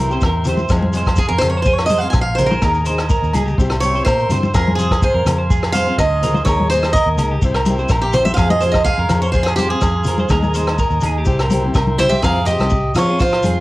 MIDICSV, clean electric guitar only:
0, 0, Header, 1, 3, 480
1, 0, Start_track
1, 0, Key_signature, -4, "minor"
1, 0, Tempo, 480384
1, 698, Time_signature, 4, 2, 24, 8
1, 13591, End_track
2, 0, Start_track
2, 0, Title_t, "Clean electric guitar"
2, 0, Program_c, 0, 27
2, 0, Note_on_c, 0, 70, 77
2, 104, Note_off_c, 0, 70, 0
2, 127, Note_on_c, 0, 72, 66
2, 225, Note_off_c, 0, 72, 0
2, 256, Note_on_c, 0, 70, 83
2, 466, Note_off_c, 0, 70, 0
2, 488, Note_on_c, 0, 72, 75
2, 702, Note_off_c, 0, 72, 0
2, 969, Note_on_c, 0, 72, 76
2, 1182, Note_off_c, 0, 72, 0
2, 1200, Note_on_c, 0, 68, 79
2, 1310, Note_off_c, 0, 68, 0
2, 1324, Note_on_c, 0, 70, 68
2, 1542, Note_off_c, 0, 70, 0
2, 1570, Note_on_c, 0, 72, 68
2, 1665, Note_off_c, 0, 72, 0
2, 1665, Note_on_c, 0, 68, 83
2, 1889, Note_off_c, 0, 68, 0
2, 1896, Note_on_c, 0, 72, 76
2, 2125, Note_off_c, 0, 72, 0
2, 2378, Note_on_c, 0, 70, 73
2, 2497, Note_off_c, 0, 70, 0
2, 2506, Note_on_c, 0, 72, 70
2, 2612, Note_off_c, 0, 72, 0
2, 2622, Note_on_c, 0, 70, 91
2, 2847, Note_off_c, 0, 70, 0
2, 2864, Note_on_c, 0, 72, 74
2, 3088, Note_off_c, 0, 72, 0
2, 3099, Note_on_c, 0, 70, 81
2, 3325, Note_off_c, 0, 70, 0
2, 3344, Note_on_c, 0, 68, 82
2, 3452, Note_off_c, 0, 68, 0
2, 3456, Note_on_c, 0, 67, 68
2, 3686, Note_off_c, 0, 67, 0
2, 3950, Note_on_c, 0, 72, 64
2, 4054, Note_off_c, 0, 72, 0
2, 4060, Note_on_c, 0, 70, 83
2, 4285, Note_off_c, 0, 70, 0
2, 4316, Note_on_c, 0, 72, 73
2, 4534, Note_off_c, 0, 72, 0
2, 4540, Note_on_c, 0, 68, 89
2, 4765, Note_off_c, 0, 68, 0
2, 4787, Note_on_c, 0, 72, 70
2, 5009, Note_off_c, 0, 72, 0
2, 5022, Note_on_c, 0, 68, 81
2, 5138, Note_off_c, 0, 68, 0
2, 5139, Note_on_c, 0, 70, 69
2, 5367, Note_off_c, 0, 70, 0
2, 5380, Note_on_c, 0, 72, 65
2, 5488, Note_off_c, 0, 72, 0
2, 5498, Note_on_c, 0, 68, 89
2, 5724, Note_off_c, 0, 68, 0
2, 5741, Note_on_c, 0, 72, 73
2, 5966, Note_off_c, 0, 72, 0
2, 6230, Note_on_c, 0, 70, 73
2, 6340, Note_off_c, 0, 70, 0
2, 6344, Note_on_c, 0, 72, 76
2, 6450, Note_off_c, 0, 72, 0
2, 6467, Note_on_c, 0, 70, 88
2, 6688, Note_off_c, 0, 70, 0
2, 6695, Note_on_c, 0, 72, 78
2, 6923, Note_off_c, 0, 72, 0
2, 6941, Note_on_c, 0, 70, 82
2, 7162, Note_off_c, 0, 70, 0
2, 7174, Note_on_c, 0, 70, 81
2, 7294, Note_off_c, 0, 70, 0
2, 7307, Note_on_c, 0, 67, 69
2, 7532, Note_off_c, 0, 67, 0
2, 7538, Note_on_c, 0, 70, 81
2, 7767, Note_off_c, 0, 70, 0
2, 7784, Note_on_c, 0, 72, 72
2, 7890, Note_off_c, 0, 72, 0
2, 7901, Note_on_c, 0, 70, 84
2, 8126, Note_off_c, 0, 70, 0
2, 8140, Note_on_c, 0, 72, 77
2, 8365, Note_off_c, 0, 72, 0
2, 8372, Note_on_c, 0, 68, 98
2, 8601, Note_off_c, 0, 68, 0
2, 8617, Note_on_c, 0, 72, 75
2, 8844, Note_off_c, 0, 72, 0
2, 8852, Note_on_c, 0, 68, 87
2, 8973, Note_off_c, 0, 68, 0
2, 8982, Note_on_c, 0, 70, 69
2, 9209, Note_off_c, 0, 70, 0
2, 9225, Note_on_c, 0, 72, 70
2, 9331, Note_off_c, 0, 72, 0
2, 9339, Note_on_c, 0, 68, 88
2, 9565, Note_off_c, 0, 68, 0
2, 9583, Note_on_c, 0, 72, 83
2, 9807, Note_off_c, 0, 72, 0
2, 10070, Note_on_c, 0, 70, 77
2, 10183, Note_off_c, 0, 70, 0
2, 10188, Note_on_c, 0, 72, 77
2, 10293, Note_off_c, 0, 72, 0
2, 10308, Note_on_c, 0, 70, 100
2, 10530, Note_off_c, 0, 70, 0
2, 10549, Note_on_c, 0, 72, 79
2, 10771, Note_off_c, 0, 72, 0
2, 10787, Note_on_c, 0, 70, 89
2, 11010, Note_off_c, 0, 70, 0
2, 11046, Note_on_c, 0, 68, 87
2, 11152, Note_off_c, 0, 68, 0
2, 11172, Note_on_c, 0, 67, 71
2, 11387, Note_off_c, 0, 67, 0
2, 11409, Note_on_c, 0, 70, 80
2, 11626, Note_off_c, 0, 70, 0
2, 11749, Note_on_c, 0, 70, 86
2, 11972, Note_off_c, 0, 70, 0
2, 11995, Note_on_c, 0, 72, 77
2, 12216, Note_off_c, 0, 72, 0
2, 12222, Note_on_c, 0, 70, 84
2, 12450, Note_off_c, 0, 70, 0
2, 12464, Note_on_c, 0, 72, 73
2, 12691, Note_off_c, 0, 72, 0
2, 13078, Note_on_c, 0, 68, 62
2, 13182, Note_off_c, 0, 68, 0
2, 13185, Note_on_c, 0, 72, 78
2, 13412, Note_off_c, 0, 72, 0
2, 13428, Note_on_c, 0, 68, 74
2, 13591, Note_off_c, 0, 68, 0
2, 13591, End_track
3, 0, Start_track
3, 0, Title_t, "Muted clean electric guitar strokes"
3, 718, Note_on_c, 9, 29, 91
3, 818, Note_off_c, 9, 29, 0
3, 3696, Note_on_c, 9, 29, 78
3, 3796, Note_off_c, 9, 29, 0
3, 13591, End_track
0, 0, End_of_file